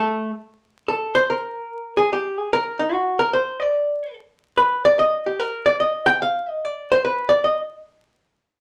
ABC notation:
X:1
M:3/4
L:1/8
Q:"Swing" 1/4=146
K:Bbmix
V:1 name="Hollow-body jazz guitar"
[=A,=A] z3 A c | B3 A G A | B E ^F B c d- | d2 z2 =B d |
e G B d e g | f e d c =B d | e z4 z |]